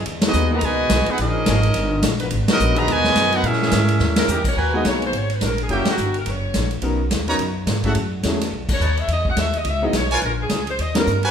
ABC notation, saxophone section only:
X:1
M:4/4
L:1/8
Q:"Swing" 1/4=212
K:G#m
V:1 name="Saxophone section"
z8 | z8 | z8 | z4 z A2 c |
B d c ^B c =B A G | =G F2 A c3 z | z8 | z4 z c2 e |
d f e d e d c B | A G2 ^B d A2 c |]